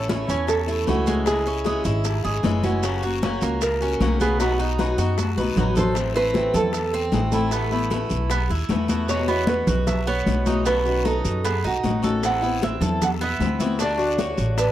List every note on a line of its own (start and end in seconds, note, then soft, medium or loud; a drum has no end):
0.00 0.23 A1 medium
0.00 0.49 C#5 loud
0.08 0.27 E3 medium
0.08 0.28 A3 medium
0.08 0.27 C#4 medium
0.08 0.29 E4 medium
0.08 0.26 E4 medium
0.08 high bongo medium
0.08 high conga medium
0.08 short guiro medium
0.08 maracas soft
0.27 0.84 E2 medium
0.27 0.46 A3 soft
0.27 0.47 C#4 soft
0.27 0.67 C#4 medium
0.27 0.47 E4 medium
0.27 high bongo soft
0.27 high conga soft
0.27 short guiro medium
0.27 maracas medium
0.47 0.88 A4 medium
0.47 muted steel-string acoustic guitar stroke medium
0.47 high bongo medium
0.47 high conga soft
0.47 long guiro medium
0.47 maracas medium
0.67 0.86 A3 soft
0.67 0.87 C#4 soft
0.67 0.86 E4 soft
0.67 1.06 E4 medium
0.67 high bongo soft
0.67 high conga soft
0.67 maracas soft
0.87 1.79 C#2 medium
0.87 1.25 E3 medium
0.87 1.26 A3 medium
0.87 1.26 C#4 medium
0.87 1.26 E4 medium
0.87 1.27 F#4 medium
0.87 high bongo soft
0.87 low bongo medium
0.87 high conga medium
0.87 short guiro medium
0.87 maracas soft
1.06 1.26 G#3 medium
1.06 high bongo soft
1.06 high conga medium
1.06 short guiro medium
1.06 maracas medium
1.26 1.45 C#3 medium
1.26 1.45 E3 medium
1.26 1.45 G#3 medium
1.26 1.46 G#3 medium
1.26 1.46 C#4 medium
1.26 1.45 E4 medium
1.26 2.60 G#4 medium
1.26 high bongo medium
1.26 high conga soft
1.26 long guiro medium
1.26 maracas medium
1.46 1.65 G#3 soft
1.46 1.65 C#4 medium
1.46 1.65 C#4 soft
1.46 1.65 E4 soft
1.46 high conga soft
1.46 maracas soft
1.64 1.84 C#3 medium
1.64 1.84 E3 medium
1.64 1.85 G#3 medium
1.64 1.84 C#4 medium
1.64 1.83 E4 medium
1.64 1.85 G#4 medium
1.64 high bongo medium
1.64 high conga medium
1.64 short guiro medium
1.64 maracas soft
1.84 2.22 G#1 loud
1.84 2.04 G#3 soft
1.84 2.04 C#4 soft
1.84 2.04 E4 soft
1.84 2.23 E4 medium
1.84 high bongo soft
1.84 short guiro medium
1.84 maracas medium
2.04 muted steel-string acoustic guitar stroke medium
2.04 high bongo medium
2.04 high conga soft
2.04 long guiro medium
2.04 maracas medium
2.24 2.43 G#1 medium
2.24 2.43 G#3 soft
2.24 2.43 C#4 soft
2.24 2.43 E4 soft
2.24 2.62 G#4 medium
2.24 high bongo soft
2.24 high conga soft
2.24 maracas soft
2.43 3.36 F#1 medium
2.43 2.82 C#3 medium
2.43 2.82 E3 medium
2.43 2.83 G#3 medium
2.43 2.83 C#4 medium
2.43 2.83 E4 medium
2.43 high bongo soft
2.43 low bongo medium
2.43 high conga medium
2.43 short guiro medium
2.43 maracas soft
2.63 3.02 C#4 medium
2.63 3.58 F#4 medium
2.63 high bongo soft
2.63 high conga medium
2.63 short guiro medium
2.63 maracas medium
2.83 3.02 C#3 medium
2.83 3.02 F#3 medium
2.83 3.03 A#3 medium
2.83 3.03 C#4 medium
2.83 3.02 F#4 medium
2.83 high bongo medium
2.83 high conga soft
2.83 long guiro medium
2.83 maracas medium
3.03 3.23 A#3 soft
3.03 3.22 C#4 soft
3.03 3.22 F#4 medium
3.03 3.22 F#4 soft
3.03 high conga soft
3.03 maracas soft
3.22 3.41 C#3 medium
3.22 3.42 F#3 medium
3.22 3.42 A#3 medium
3.22 3.41 C#4 medium
3.22 3.42 C#4 medium
3.22 3.41 F#4 medium
3.22 high bongo soft
3.22 high conga medium
3.22 short guiro medium
3.22 maracas soft
3.41 3.97 C#2 loud
3.41 3.80 A#3 medium
3.41 3.61 A#3 soft
3.41 3.61 C#4 soft
3.41 3.61 F#4 soft
3.41 high bongo soft
3.41 high conga soft
3.41 short guiro medium
3.41 maracas medium
3.61 4.21 A#4 medium
3.61 muted steel-string acoustic guitar stroke medium
3.61 high bongo medium
3.61 high conga soft
3.61 long guiro medium
3.61 maracas medium
3.81 4.00 A#3 soft
3.81 4.19 C#4 medium
3.81 4.00 C#4 soft
3.81 4.00 F#4 soft
3.81 high bongo soft
3.81 high conga soft
3.81 maracas soft
4.00 4.92 B1 medium
4.00 4.39 C#3 medium
4.00 4.39 F#3 medium
4.00 4.39 A#3 medium
4.00 4.40 C#4 medium
4.00 4.40 F#4 medium
4.00 high bongo soft
4.00 low bongo medium
4.00 high conga medium
4.00 short guiro medium
4.00 maracas soft
4.20 4.39 B3 medium
4.20 4.39 G#4 medium
4.20 high bongo soft
4.20 high conga medium
4.20 short guiro medium
4.20 maracas medium
4.40 4.58 B2 medium
4.40 4.59 F#3 medium
4.40 4.59 B3 medium
4.40 4.59 D#4 medium
4.40 4.58 F#4 medium
4.40 5.15 F#4 medium
4.40 high bongo medium
4.40 high conga soft
4.40 long guiro medium
4.40 maracas medium
4.59 4.78 B3 soft
4.59 4.78 D#4 medium
4.59 4.78 D#4 soft
4.59 4.78 F#4 medium
4.59 high conga soft
4.59 maracas soft
4.78 4.97 B2 medium
4.78 4.98 F#3 medium
4.78 4.98 B3 medium
4.78 4.98 D#4 medium
4.78 4.97 F#4 medium
4.78 4.98 B4 medium
4.78 high bongo medium
4.78 high conga medium
4.78 short guiro medium
4.78 maracas soft
4.98 5.35 F#2 medium
4.98 5.17 B3 soft
4.98 5.18 D#4 soft
4.98 5.36 F#4 medium
4.98 5.17 F#4 medium
4.98 high bongo soft
4.98 short guiro medium
4.98 maracas medium
5.18 muted steel-string acoustic guitar stroke medium
5.18 high bongo medium
5.18 high conga medium
5.18 long guiro medium
5.18 maracas medium
5.37 5.56 B1 medium
5.37 5.57 B3 soft
5.37 5.57 D#4 soft
5.37 5.56 F#4 soft
5.37 5.76 B4 medium
5.37 high bongo soft
5.37 high conga medium
5.37 maracas soft
5.56 6.48 A1 medium
5.56 5.95 B2 medium
5.56 5.95 F#3 medium
5.56 5.96 B3 medium
5.56 5.96 D#4 medium
5.56 5.96 F#4 medium
5.56 high bongo soft
5.56 low bongo medium
5.56 low conga loud
5.56 short guiro medium
5.56 maracas soft
5.75 5.96 A4 medium
5.75 6.16 C5 loud
5.75 high bongo soft
5.75 low conga loud
5.75 short guiro medium
5.75 maracas medium
5.95 6.15 E3 medium
5.95 6.15 A3 medium
5.95 6.15 C4 medium
5.95 6.14 E4 medium
5.95 high bongo medium
5.95 high conga soft
5.95 long guiro medium
5.95 maracas medium
6.15 6.35 A3 soft
6.15 6.54 C4 medium
6.15 6.35 C4 medium
6.15 6.34 E4 medium
6.15 6.56 B4 loud
6.15 high conga soft
6.15 maracas soft
6.34 6.72 E3 soft
6.34 6.73 A3 medium
6.34 6.73 C4 medium
6.34 6.73 E4 medium
6.34 high bongo medium
6.34 high conga medium
6.34 short guiro medium
6.34 maracas soft
6.54 7.09 E2 loud
6.54 6.92 A4 medium
6.54 high bongo soft
6.54 high conga soft
6.54 low conga medium
6.54 short guiro medium
6.54 maracas medium
6.73 muted steel-string acoustic guitar stroke medium
6.73 high bongo medium
6.73 high conga soft
6.73 long guiro medium
6.73 maracas medium
6.93 7.32 C4 medium
6.93 high bongo soft
6.93 high conga soft
6.93 maracas soft
7.12 8.05 A1 medium
7.12 7.32 E3 medium
7.12 7.32 A3 medium
7.12 7.32 C4 soft
7.12 7.31 E4 medium
7.12 7.19 G#4 medium
7.12 high bongo soft
7.12 low bongo medium
7.12 high conga medium
7.12 short guiro medium
7.12 maracas soft
7.32 7.52 A3 soft
7.32 7.52 C4 medium
7.32 7.52 E4 medium
7.32 7.87 A4 medium
7.32 high bongo soft
7.32 high conga medium
7.32 short guiro medium
7.32 maracas medium
7.51 7.71 E3 medium
7.51 7.72 A3 medium
7.51 7.90 B3 medium
7.51 7.71 B3 medium
7.51 7.70 E4 medium
7.51 high bongo medium
7.51 high conga soft
7.51 long guiro medium
7.51 maracas medium
7.71 7.91 A3 soft
7.71 7.91 B3 medium
7.71 7.91 E4 medium
7.71 high conga soft
7.71 maracas soft
7.90 8.29 E3 soft
7.90 8.29 A3 medium
7.90 8.30 B3 medium
7.90 8.30 E4 medium
7.90 high bongo medium
7.90 high conga medium
7.90 short guiro medium
7.90 maracas soft
8.09 8.47 B1 medium
8.09 high bongo soft
8.09 short guiro medium
8.09 maracas medium
8.30 8.50 B3 medium
8.30 muted steel-string acoustic guitar stroke medium
8.30 high bongo medium
8.30 high conga soft
8.30 long guiro medium
8.30 maracas medium
8.50 8.68 D#2 medium
8.50 8.89 E4 medium
8.50 high bongo soft
8.50 high conga soft
8.50 maracas soft
8.69 9.62 E2 medium
8.69 8.89 E3 medium
8.69 8.89 A3 medium
8.69 8.88 B3 medium
8.69 8.87 E4 medium
8.69 high bongo soft
8.69 low bongo medium
8.69 high conga medium
8.69 short guiro medium
8.69 maracas soft
8.88 9.09 A3 medium
8.88 9.08 B3 medium
8.88 9.08 E4 medium
8.88 9.28 F#4 medium
8.88 high bongo soft
8.88 high conga medium
8.88 short guiro medium
8.88 maracas medium
9.08 9.28 B2 medium
9.08 9.28 E3 medium
9.08 9.28 G#3 medium
9.08 9.27 B3 medium
9.08 9.27 F#4 medium
9.08 9.46 C#5 medium
9.08 high bongo medium
9.08 high conga soft
9.08 long guiro medium
9.08 maracas medium
9.28 9.46 E3 medium
9.28 9.46 G#3 medium
9.28 9.67 B3 medium
9.28 9.47 B3 medium
9.28 9.47 F#4 medium
9.28 high conga soft
9.28 maracas soft
9.47 9.86 E3 soft
9.47 9.86 G#3 medium
9.47 9.86 B3 medium
9.47 9.86 F#4 medium
9.47 9.85 B4 medium
9.47 high bongo soft
9.47 high conga loud
9.47 short guiro medium
9.47 maracas soft
9.67 10.22 B1 loud
9.67 10.06 F#4 medium
9.67 high bongo soft
9.67 high conga soft
9.67 low conga medium
9.67 short guiro medium
9.67 maracas medium
9.87 10.08 E5 medium
9.87 muted steel-string acoustic guitar stroke medium
9.87 high bongo medium
9.87 high conga soft
9.87 low conga medium
9.87 long guiro medium
9.87 maracas loud
10.07 10.45 B3 medium
10.07 10.62 C#5 medium
10.07 high bongo soft
10.07 high conga soft
10.07 maracas soft
10.26 11.19 B1 medium
10.26 10.45 E3 medium
10.26 10.46 G#3 medium
10.26 10.45 B3 medium
10.26 10.45 F#4 medium
10.26 high bongo soft
10.26 low bongo medium
10.26 high conga medium
10.26 short guiro medium
10.26 maracas soft
10.46 10.65 E3 medium
10.46 10.66 G#3 medium
10.46 10.65 B3 medium
10.46 10.66 D#4 medium
10.46 10.65 F#4 medium
10.46 high bongo soft
10.46 high conga medium
10.46 short guiro medium
10.46 maracas medium
10.65 10.84 B2 medium
10.65 10.85 D#3 medium
10.65 11.04 B3 medium
10.65 10.85 C#4 medium
10.65 10.84 F#4 medium
10.65 11.06 B4 medium
10.65 high bongo medium
10.65 high conga soft
10.65 long guiro medium
10.65 maracas medium
10.85 11.04 D#3 medium
10.85 11.04 C#4 medium
10.85 11.04 F#4 medium
10.85 high conga soft
10.85 maracas soft
11.04 11.43 B2 soft
11.04 11.44 D#3 soft
11.04 11.44 C#4 soft
11.04 11.43 D#4 medium
11.04 11.44 F#4 medium
11.04 11.43 A4 medium
11.04 high bongo soft
11.04 high conga medium
11.04 short guiro medium
11.04 maracas soft
11.25 11.61 F#2 loud
11.25 high bongo soft
11.25 short guiro medium
11.25 maracas medium
11.44 11.64 B3 medium
11.44 11.63 G#4 medium
11.44 muted steel-string acoustic guitar stroke medium
11.44 high bongo medium
11.44 high conga soft
11.44 long guiro medium
11.44 maracas medium
11.64 11.82 B1 medium
11.64 12.02 D#4 medium
11.64 12.02 F#4 medium
11.64 high bongo soft
11.64 high conga soft
11.64 maracas soft
11.83 12.76 A1 medium
11.83 12.02 B2 medium
11.83 12.03 D#3 medium
11.83 12.02 C#4 medium
11.83 12.01 F#4 medium
11.83 high bongo soft
11.83 low bongo medium
11.83 high conga medium
11.83 short guiro medium
11.83 maracas soft
12.02 12.22 D#3 medium
12.02 12.22 C#4 medium
12.02 12.22 F#4 medium
12.02 12.42 A4 medium
12.02 high bongo soft
12.02 high conga medium
12.02 short guiro medium
12.02 maracas medium
12.23 12.42 E3 medium
12.23 12.42 B3 medium
12.23 12.42 C4 medium
12.23 12.40 E4 medium
12.23 12.64 F#5 loud
12.23 high bongo medium
12.23 long guiro medium
12.23 maracas medium
12.42 12.61 B3 medium
12.42 12.62 C4 medium
12.42 12.61 E4 medium
12.42 high conga soft
12.42 maracas soft
12.62 13.00 E3 soft
12.62 13.00 B3 soft
12.62 13.00 C4 soft
12.62 13.01 E4 medium
12.62 13.03 E5 medium
12.62 high bongo medium
12.62 high conga medium
12.62 short guiro medium
12.62 maracas soft
12.81 13.36 E2 loud
12.81 13.20 A4 medium
12.81 high bongo soft
12.81 high conga soft
12.81 low conga medium
12.81 short guiro medium
12.81 maracas medium
13.01 13.08 F#5 loud
13.01 muted steel-string acoustic guitar stroke medium
13.01 high bongo medium
13.01 high conga soft
13.01 low conga medium
13.01 long guiro medium
13.01 maracas medium
13.21 13.59 B3 medium
13.21 13.77 E5 loud
13.21 high bongo soft
13.21 high conga soft
13.21 maracas soft
13.40 14.32 D2 medium
13.40 13.59 E3 medium
13.40 13.59 B3 medium
13.40 13.59 C4 medium
13.40 13.58 E4 medium
13.40 high bongo soft
13.40 low bongo medium
13.40 high conga medium
13.40 short guiro medium
13.40 maracas soft
13.60 13.79 B3 medium
13.60 13.79 C4 medium
13.60 13.79 E4 medium
13.60 13.79 F#4 medium
13.60 high bongo soft
13.60 high conga medium
13.60 short guiro medium
13.60 maracas medium
13.78 13.98 D3 medium
13.78 13.98 A3 medium
13.78 14.18 D4 medium
13.78 13.97 D4 medium
13.78 13.96 F#4 medium
13.78 14.20 D5 loud
13.78 high bongo medium
13.78 high conga soft
13.78 long guiro medium
13.78 maracas medium
13.98 14.17 A3 medium
13.98 14.18 D4 medium
13.98 14.17 F#4 medium
13.98 high conga soft
13.98 maracas soft
14.18 14.56 D3 soft
14.18 14.57 A3 soft
14.18 14.57 D4 soft
14.18 14.57 F#4 medium
14.18 14.56 C#5 medium
14.18 high bongo medium
14.18 high conga medium
14.18 short guiro medium
14.18 maracas soft
14.38 14.72 A1 loud
14.38 high bongo soft
14.38 short guiro medium
14.38 maracas medium
14.57 14.72 D4 medium
14.57 14.72 B4 medium
14.57 muted steel-string acoustic guitar stroke medium
14.57 high bongo medium
14.57 high conga soft
14.57 long guiro medium
14.57 maracas medium